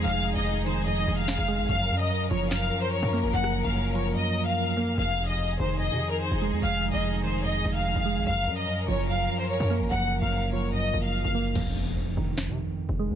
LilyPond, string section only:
\new Staff \with { instrumentName = "String section" } { \time 4/4 \key f \phrygian \tempo 4 = 146 <f ees' aes'>1 | <f des' bes'>1~ | <f des' bes'>1 | <f ees' aes'>1~ |
<f ees' aes'>1 | <f des' bes'>1~ | <f des' bes'>1 | r1 | }